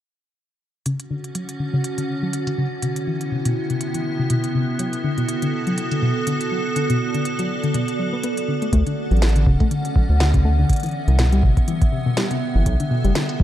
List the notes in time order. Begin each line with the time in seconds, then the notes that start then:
0.86 C#3 D3 C#4 F#4, closed hi-hat
1.00 closed hi-hat
1.10 D3
1.24 closed hi-hat
1.35 F#3, closed hi-hat
1.49 closed hi-hat
1.60 D3
1.73 C#3
1.84 closed hi-hat
1.98 D3, closed hi-hat
2.23 F#3
2.33 closed hi-hat
2.47 D3, closed hi-hat
2.58 C#3
2.82 C3 B3 E4, closed hi-hat
2.96 closed hi-hat
3.07 E3
3.21 closed hi-hat
3.32 C3
3.45 B2, closed hi-hat
3.70 C3, closed hi-hat
3.81 closed hi-hat
3.94 E3, closed hi-hat
4.19 C3
4.30 B2, closed hi-hat
4.44 closed hi-hat
4.55 C3
4.79 F#3 F#4 A4, closed hi-hat
4.93 closed hi-hat
5.04 D3
5.18 B2, closed hi-hat
5.29 closed hi-hat
5.42 D3, closed hi-hat
5.67 F#3, closed hi-hat
5.78 closed hi-hat
5.91 D3, closed hi-hat
6.02 B2
6.27 D3, closed hi-hat
6.41 closed hi-hat
6.51 F#3
6.76 D3 D5, closed hi-hat
6.90 B2, closed hi-hat
7.14 D3, closed hi-hat
7.25 closed hi-hat
7.39 F#3, closed hi-hat
7.64 D3, closed hi-hat
7.74 B2, closed hi-hat
7.88 closed hi-hat
7.99 F#3
8.13 B3
8.23 B3, closed hi-hat
8.37 closed hi-hat
8.48 D3
8.62 A3, closed hi-hat
8.73 D2 D3 A3 C#4 F#5, kick, closed hi-hat
8.87 D3, closed hi-hat
9.11 A1 F#3, closed hi-hat
9.17 closed hi-hat
9.22 snare, closed hi-hat
9.29 closed hi-hat
9.36 D3, closed hi-hat
9.46 D1 C#3, kick
9.60 A3, kick, closed hi-hat
9.71 D3, closed hi-hat
9.85 closed hi-hat
9.96 F#3, kick
10.09 D2
10.20 D3, snare, closed hi-hat
10.34 C#3, kick, closed hi-hat
10.45 A3
10.59 D3
10.69 C3 B3 E5, kick, closed hi-hat
10.73 closed hi-hat
10.76 closed hi-hat
10.80 closed hi-hat
10.83 E3, closed hi-hat
10.86 closed hi-hat
10.89 closed hi-hat
10.91 closed hi-hat
11.08 C2 C3, closed hi-hat
11.19 B2, snare, closed hi-hat
11.32 G3, closed hi-hat
11.43 G1 C3, kick
11.57 kick, closed hi-hat
11.68 E3, closed hi-hat
11.82 kick, closed hi-hat
11.92 C3
12.06 B2
12.17 G3, snare, closed hi-hat
12.31 C3, closed hi-hat
12.55 G1 E3
12.66 B1 F#4 A4, kick, closed hi-hat
12.80 D3, closed hi-hat
12.91 B2
13.04 F#1 G3, closed hi-hat
13.15 D3, snare, closed hi-hat
13.29 closed hi-hat
13.40 F#1 F#3, kick